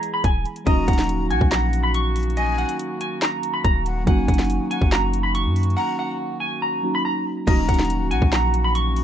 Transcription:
Already playing: woodwind section E3 G#3 B3 G#4, synth keys E3 G#3 B3 E4 G#4, clean electric guitar A#5
0.03 closed hi-hat
0.14 clean electric guitar B5
0.24 808-style bass D#1, clean electric guitar G#5, kick, closed hi-hat
0.45 closed hi-hat
0.56 closed hi-hat
0.64 808-style bass D#1, woodwind section D#3 A#3 C#4 F#4, synth keys F#3 A#3 C#4 D#4, clean electric guitar D#5, flute A#5, kick, closed hi-hat
0.69 synth keys F#4
0.88 808-style bass D#1, clean electric guitar F#5, kick, closed hi-hat
0.93 closed hi-hat
0.99 snare, closed hi-hat
1.04 closed hi-hat
1.09 closed hi-hat
1.30 808-style bass A#1, flute F#5, clean electric guitar G#5, closed hi-hat
1.41 808-style bass A#1, kick
1.51 clean electric guitar A#5, snare, clap, closed hi-hat
1.73 closed hi-hat
1.83 clean electric guitar B5
1.94 clean electric guitar C#6, closed hi-hat
2.16 closed hi-hat, open hi-hat
2.23 closed hi-hat
2.30 closed hi-hat
2.37 clean electric guitar D#5, flute G#5, closed hi-hat
2.58 clean electric guitar F#5, closed hi-hat
2.69 closed hi-hat
2.79 closed hi-hat
3.01 clean electric guitar G#5, closed hi-hat
3.22 clean electric guitar A#5, snare, clap, closed hi-hat
3.43 closed hi-hat
3.54 clean electric guitar B5
3.64 808-style bass D#1, clean electric guitar A#5, kick, closed hi-hat
3.86 flute F#5, closed hi-hat
4.05 808-style bass F#1, synth keys F#3 A#3 C#4 D#4, woodwind section F#4, clean electric guitar F#5, flute G#5, kick, closed hi-hat
4.09 synth keys F#4
4.28 808-style bass F#1, clean electric guitar F#5, kick, closed hi-hat
4.34 closed hi-hat
4.39 snare, closed hi-hat
4.44 closed hi-hat
4.50 closed hi-hat
4.71 flute F#5, clean electric guitar G#5, closed hi-hat
4.82 808-style bass F#1, kick
4.92 clean electric guitar A#5, snare, clap, closed hi-hat
5.13 closed hi-hat
5.23 clean electric guitar B5
5.35 clean electric guitar C#6, closed hi-hat
5.45 808-style bass F#2
5.56 closed hi-hat, open hi-hat
5.63 closed hi-hat
5.70 closed hi-hat
5.77 clean electric guitar F#5, flute A#5
5.99 clean electric guitar F#5
6.40 clean electric guitar G#5
6.62 clean electric guitar A#5
6.83 synth keys F#3 A#3 C#4 D#4 F#4
6.95 clean electric guitar B5
7.05 clean electric guitar A#5
7.45 808-style bass D#1, woodwind section D#3 A#3 C#4 F#4, synth keys F#3 A#3 C#4 D#4, clean electric guitar D#5, flute A#5, kick, closed hi-hat, crash
7.50 synth keys F#4
7.69 808-style bass D#1, clean electric guitar F#5, kick, closed hi-hat
7.74 closed hi-hat
7.79 snare, closed hi-hat
7.85 closed hi-hat
7.90 closed hi-hat
8.11 808-style bass A#1, flute F#5, clean electric guitar G#5, closed hi-hat
8.22 808-style bass A#1, kick
8.33 clean electric guitar A#5, snare, clap, closed hi-hat
8.54 closed hi-hat
8.64 clean electric guitar B5
8.75 clean electric guitar C#6, closed hi-hat
8.96 closed hi-hat, open hi-hat

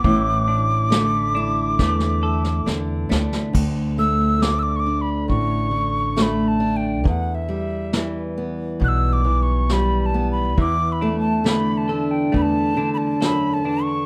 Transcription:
Already playing: clean electric guitar B3 E4 G4, tin whistle D6
0.04 upright bass A1, steel-string acoustic guitar A2, clean electric guitar E3, kick
0.48 clean electric guitar D4
0.90 steel-string acoustic guitar D3, clean electric guitar A3, snare
1.35 clean electric guitar D4, steel-string acoustic guitar E4
1.79 steel-string acoustic guitar E2, upright bass E2, clean electric guitar A3, kick, snare
2.00 snare
2.23 clean electric guitar A4
2.44 snare
2.66 upright bass E2, steel-string acoustic guitar D3, clean electric guitar D4, snare
3.09 upright bass D2, clean electric guitar A3, steel-string acoustic guitar D4, snare
3.33 snare
3.53 steel-string acoustic guitar D2, upright bass D2, kick, crash
3.98 steel-string acoustic guitar A3, tin whistle E6
4.40 steel-string acoustic guitar D3, tin whistle D6, snare
4.59 tin whistle D6 E6
4.76 tin whistle C#6 D6
4.86 steel-string acoustic guitar D4
5.01 tin whistle B5
5.28 upright bass A1, steel-string acoustic guitar A2, tin whistle C#6, kick
5.71 steel-string acoustic guitar D3
6.17 steel-string acoustic guitar A3, tin whistle C#6, snare
6.22 tin whistle B5
6.48 tin whistle A5
6.60 steel-string acoustic guitar D4
6.77 tin whistle G5
7.04 steel-string acoustic guitar E2, upright bass E2, kick
7.08 tin whistle F#5
7.35 tin whistle E5
7.49 steel-string acoustic guitar G3
7.93 steel-string acoustic guitar E3, snare
8.38 steel-string acoustic guitar B3
8.80 upright bass B1, steel-string acoustic guitar B2, kick
8.84 tin whistle F#6
8.88 tin whistle E6
9.13 tin whistle D6
9.25 steel-string acoustic guitar E3
9.43 tin whistle C#6
9.69 steel-string acoustic guitar G3, tin whistle B5, snare
10.02 tin whistle A5 B5
10.14 steel-string acoustic guitar B3
10.32 tin whistle B5
10.57 steel-string acoustic guitar E2, upright bass E2, clean electric guitar E3, tin whistle D6, kick
10.92 tin whistle B5
11.01 steel-string acoustic guitar A3, clean electric guitar D4
11.20 tin whistle A5
11.44 steel-string acoustic guitar D3, clean electric guitar A3, snare
11.49 tin whistle B5
11.78 tin whistle A5
11.89 steel-string acoustic guitar D4, clean electric guitar A4
12.06 tin whistle A5
12.11 tin whistle G5
12.32 steel-string acoustic guitar E2, upright bass E2, clean electric guitar A3, kick
12.37 tin whistle B5
12.42 tin whistle A5
12.77 steel-string acoustic guitar D3, clean electric guitar D4
12.94 tin whistle A5 B5
13.20 steel-string acoustic guitar F#2, clean electric guitar A4, snare
13.25 tin whistle B5
13.54 tin whistle A5
13.64 steel-string acoustic guitar E2, clean electric guitar D4
13.83 tin whistle C#6

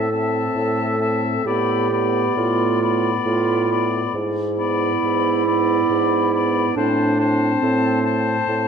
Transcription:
Already playing: bassoon A2, clarinet A4
0.11 french horn C4, oboe E5, flute A5
0.56 bassoon A2
0.99 french horn C4, oboe E5, flute A5
1.46 bassoon A2, french horn B3, clarinet G4, oboe D5, flute B5
1.92 french horn B3, oboe D5, flute B5
2.37 bassoon A2, clarinet F4
2.81 french horn B3, oboe D5, flute B5
3.26 bassoon A2, clarinet F4
3.69 french horn B3, oboe D5, flute B5
4.14 bassoon G#2, clarinet E4
4.57 french horn B3, oboe D5, flute B5
5.04 bassoon G#2
5.46 french horn B3, oboe D5, flute B5
5.90 bassoon G#2
6.33 french horn B3, oboe D5, flute B5
6.76 bassoon A2, french horn C4, clarinet D4, oboe C5, flute A5
7.18 french horn C4, oboe C5, flute A5
7.62 bassoon A2, clarinet C4
8.03 french horn C4, oboe C5, flute A5
8.48 bassoon A2

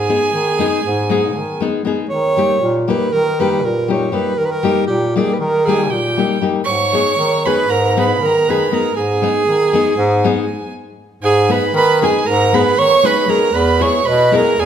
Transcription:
Already playing: bass clarinet G#2, alto saxophone G#4, violin G#5
0.09 nylon-string guitar G#3 B3 D#4 G#4
0.33 bass clarinet D#3
0.59 nylon-string guitar G#3 B3 D#4 G#4
0.85 bass clarinet G#2
1.09 nylon-string guitar G#3 B3 D#4 G#4
1.35 bass clarinet D#3
1.61 nylon-string guitar G#3 B3 D#4 G#4
1.85 nylon-string guitar G#3 B3 D#4 G#4
2.09 bass clarinet D#3, alto saxophone C#5
2.37 nylon-string guitar G3 A#3 D#4 G4
2.61 bass clarinet A#2
2.88 nylon-string guitar G3 A#3 D#4 G4, alto saxophone B4
3.12 bass clarinet D#3, alto saxophone A#4
3.40 nylon-string guitar G3 A#3 D#4 G4, alto saxophone B4
3.64 bass clarinet A#2, alto saxophone A#4
3.88 nylon-string guitar G3 A#3 D#4 G4, alto saxophone C#5
4.12 nylon-string guitar G3 A#3 D#4 G4, alto saxophone B4
4.37 bass clarinet D#3, alto saxophone A#4
4.45 alto saxophone B4
4.51 alto saxophone A#4
4.63 nylon-string guitar G3 A#3 D#4 G4
4.87 bass clarinet A#2, alto saxophone G4
5.16 nylon-string guitar G3 A#3 D#4 G4, alto saxophone G#4
5.34 alto saxophone B4
5.40 bass clarinet D#3, alto saxophone A#4
5.66 nylon-string guitar G3 A#3 D#4 G4, alto saxophone G#4, violin G#5
5.83 alto saxophone G#4, violin G#5
5.88 bass clarinet A#2, alto saxophone G4, violin G5
6.17 nylon-string guitar G3 A#3 D#4 G4
6.41 nylon-string guitar G3 A#3 D#4 G4
6.65 bass clarinet G#2, alto saxophone C#5, violin C#6
6.93 nylon-string guitar G#3 B3 D#4 G#4
7.17 bass clarinet D#3
7.46 nylon-string guitar G#3 B3 D#4 G#4, alto saxophone B4, violin B5
7.68 bass clarinet G#2, alto saxophone A#4, violin A#5
7.97 nylon-string guitar G#3 B3 D#4 G#4, alto saxophone B4, violin B5
8.21 bass clarinet D#3, alto saxophone A#4
8.25 violin A#5
8.48 nylon-string guitar G#3 B3 D#4 G#4, alto saxophone B4, violin B5
8.72 nylon-string guitar G#3 B3 D#4 G#4, alto saxophone A#4, violin A#5
8.94 bass clarinet G#2, alto saxophone G#4, violin G#5
9.22 nylon-string guitar G#3 B3 D#4 G#4
9.46 bass clarinet D#3
9.73 nylon-string guitar G#3 B3 D#4 G#4
9.97 bass clarinet G#2
10.24 nylon-string guitar G#3 B3 D#4 G#4
11.23 bass clarinet G#2, alto saxophone G#4, violin G#5
11.49 nylon-string guitar G#3 B3 D#4 G#4, alto saxophone B4, violin B5
11.74 bass clarinet D#3, alto saxophone B4, violin B5
12.02 nylon-string guitar G#3 B3 D#4 G#4, alto saxophone G#4, violin G#5
12.26 bass clarinet G#2, alto saxophone A#4, violin A#5
12.52 nylon-string guitar G#3 B3 D#4 G#4, alto saxophone B4, violin B5
12.79 bass clarinet D#3, alto saxophone C#5, violin C#6
13.03 nylon-string guitar G#3 B3 D#4 G#4, alto saxophone B4, violin B5
13.28 nylon-string guitar G#3 B3 D#4 G#4, alto saxophone A#4, violin A#5
13.52 bass clarinet E2, alto saxophone B4, violin B5
13.79 nylon-string guitar G#3 B3 E4 G#4, alto saxophone C#5, violin C#6
14.05 bass clarinet B2, alto saxophone B4, violin B5
14.31 nylon-string guitar G#3 B3 E4 G#4, violin A#5
14.37 alto saxophone A#4
14.57 bass clarinet E2, alto saxophone G#4, violin G#5

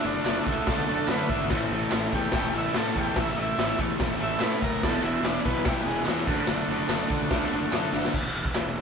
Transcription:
Already playing: transistor combo organ D4 F#4 A4
0.03 fingered electric bass F#1, distorted electric guitar D3 A3 D4, transistor combo organ D4
0.25 fingered electric bass F#1, distorted electric guitar D3 A3 D4, snare, clap, open hi-hat
0.44 fingered electric bass C#2, distorted electric guitar D3 A3 D4, kick, clap
0.49 transistor combo organ E4
0.67 fingered electric bass C#2, distorted electric guitar D3 A3 D4, transistor combo organ A4, kick, snare, open hi-hat
0.87 fingered electric bass F#1, distorted electric guitar D3 A3 D4
1.07 fingered electric bass F#2, distorted electric guitar D3 A3 D4, transistor combo organ B4, snare, clap, open hi-hat
1.29 fingered electric bass G#1, distorted electric guitar D3 A3 D4, transistor combo organ E4, kick
1.49 fingered electric bass A1, distorted electric guitar A2 E3 A3, transistor combo organ C#4 E4 A4, kick, snare, crash
1.71 fingered electric bass A1, distorted electric guitar A2 E3 A3
1.91 fingered electric bass A1, distorted electric guitar A2, snare, clap, open hi-hat
1.96 distorted electric guitar E3 A3
2.12 fingered electric bass E2, distorted electric guitar A2 E3 A3, transistor combo organ G4, kick
2.32 fingered electric bass E1, distorted electric guitar A2 E3 A3, transistor combo organ G4, kick, snare, open hi-hat
2.53 fingered electric bass A1, distorted electric guitar A2 E3 A3
2.58 transistor combo organ E4
2.73 distorted electric guitar A2 E3 A3, fingered electric bass A2, snare, clap, open hi-hat
2.78 transistor combo organ A4
2.94 fingered electric bass E2, distorted electric guitar A2 E3 A3, kick
3.00 transistor combo organ G4
3.16 fingered electric bass A1, distorted electric guitar A2 E3 A3, kick, snare, open hi-hat
3.21 transistor combo organ E4
3.38 fingered electric bass A1, distorted electric guitar A2 E3 A3, transistor combo organ D#4
3.42 transistor combo organ E4
3.58 fingered electric bass A1, distorted electric guitar A2 E3 A3, snare, clap, open hi-hat
3.79 fingered electric bass E2, distorted electric guitar A2 E3 A3, kick
3.99 fingered electric bass E1, distorted electric guitar A2 E3 A3, kick, snare, open hi-hat
4.20 fingered electric bass A1, distorted electric guitar A2 E3 A3, transistor combo organ E5
4.39 distorted electric guitar A2 E3 A3, fingered electric bass A2, transistor combo organ B4, snare, clap, open hi-hat
4.61 fingered electric bass F#1, distorted electric guitar A2 E3 A3, transistor combo organ A#4, kick
4.79 transistor combo organ B3 E4 G#4
4.83 fingered electric bass E1, distorted electric guitar E2 B2 E3, transistor combo organ A4, kick, snare, crash
5.02 fingered electric bass E1, distorted electric guitar E2 B2 E3, transistor combo organ E4
5.23 fingered electric bass E1, distorted electric guitar E2 B2 E3, transistor combo organ D4, snare, clap, open hi-hat
5.45 fingered electric bass B1, distorted electric guitar E2 B2 E3, transistor combo organ B3, kick
5.65 fingered electric bass B1, distorted electric guitar E2 B2 E3, transistor combo organ G3, kick, snare, open hi-hat
5.86 fingered electric bass E1, distorted electric guitar E2 B2 E3, transistor combo organ G#3
6.05 distorted electric guitar E2 B2 E3, fingered electric bass E2, snare, clap, open hi-hat
6.25 fingered electric bass F#1, distorted electric guitar D3 A3, transistor combo organ D4 F#4 A4, kick, crash
6.30 distorted electric guitar D4
6.46 fingered electric bass F#1, distorted electric guitar D3 A3 D4, snare
6.68 fingered electric bass F#1, distorted electric guitar D3 A3 D4
6.87 fingered electric bass F#1, distorted electric guitar D3 A3 D4, snare, clap, open hi-hat
7.08 fingered electric bass C#2, distorted electric guitar D3 A3 D4, kick
7.30 fingered electric bass C#2, distorted electric guitar D3 A3 D4, kick, snare, open hi-hat
7.52 fingered electric bass F#1, distorted electric guitar D3 A3 D4
7.71 fingered electric bass F#2, distorted electric guitar D3 A3 D4, snare, clap, open hi-hat
7.93 fingered electric bass F#1, distorted electric guitar D3 A3 D4, snare
8.05 snare
8.13 fingered electric bass E1, transistor combo organ E4 G#4 B4, kick, crash
8.34 fingered electric bass E1
8.45 kick
8.54 fingered electric bass E1, snare, clap, crash

